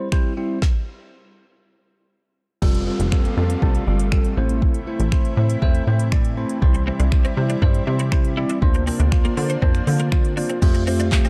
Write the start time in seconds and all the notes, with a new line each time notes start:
0.12 G3 C4 E4 C5, finger snap, kick
0.37 G3 C4 E4 C5
0.62 kick, snare
2.62 F1 C3 G3 A3 C4 F4 A4, kick, crash, downlifter
2.75 closed hi-hat
2.87 G3 C4 F4 A4
3.00 F1, closed hi-hat
3.12 G3 C4 F4 A4, finger snap, kick
3.25 closed hi-hat
3.37 F2 G3 C4 F4 A4
3.50 closed hi-hat
3.62 C2 G3 C4 F4 A4, kick
3.75 closed hi-hat
3.87 G1 G3 C4 F4 A4
3.99 closed hi-hat
4.12 G3 C4 F4 A4, finger snap, kick
4.25 closed hi-hat
4.37 A1 E3 A3 C4 E4 C5
4.49 closed hi-hat
4.62 kick
4.74 closed hi-hat
4.87 A3 C4 E4 C5
5.00 A1, closed hi-hat
5.12 A3 C4 E4 C5, finger snap, kick
5.25 closed hi-hat
5.37 A2 A3 C4 E4 C5
5.50 closed hi-hat
5.62 E2 A3 C4 E4 C5, kick
5.75 closed hi-hat
5.87 A2 A3 C4 E4 C5
5.99 closed hi-hat
6.12 A3 C4 E4 D5, finger snap, kick
6.25 closed hi-hat
6.37 A3 C4 E4 C5
6.49 closed hi-hat
6.62 C2 G3 C4 E4 C5, kick
6.74 muted clean electric guitar stroke, closed hi-hat
6.87 G3 C4 E4 C5
7.00 C2 D4, closed hi-hat
7.12 G3 C4 E4 C5, finger snap, kick
7.25 C4, closed hi-hat
7.37 C3 G3 C4 E4 C5, muted clean electric guitar stroke
7.50 D4, closed hi-hat
7.62 G2 G3 C4 D4 E4 C5, kick
7.75 closed hi-hat
7.87 C3 G3 C4 E4 C5, muted clean electric guitar stroke
7.99 C4, closed hi-hat
8.12 G3 C4 E4 C5, finger snap, muted clean electric guitar stroke, kick
8.25 closed hi-hat
8.37 G3 C4 E4 D5
8.49 D4, closed hi-hat
8.62 D2 F3 A#3 D4 F4 C5, kick
8.74 muted clean electric guitar stroke, closed hi-hat
8.87 A#3 C4 D4 F4 C5, open hi-hat
9.00 D2 D4, closed hi-hat
9.12 A#3 D4 F4 C5, finger snap, kick
9.25 A#3, closed hi-hat
9.37 D3 A#3 D4 F4 C5, muted clean electric guitar stroke, open hi-hat
9.50 C4, closed hi-hat
9.62 F2 A#3 C4 D4 F4 C5, kick
9.75 finger snap, closed hi-hat
9.87 D3 A#3 D4 F4 C5, muted clean electric guitar stroke, open hi-hat
10.00 A#3, closed hi-hat
10.12 A#3 D4 F4 C5, finger snap, muted clean electric guitar stroke, kick
10.25 closed hi-hat
10.37 A#3 D4 F4 C5, open hi-hat
10.49 C4, closed hi-hat
10.62 F2 G3 A3 C4 F4 G4 C5, kick, crash, shaker
10.74 muted clean electric guitar stroke, closed hi-hat, shaker
10.87 A3 C4 F4 G4 C5, open hi-hat, shaker
11.00 D4, closed hi-hat, shaker
11.12 A3 C4 F4 G4 C5, kick, clap, shaker
11.25 C4, closed hi-hat, shaker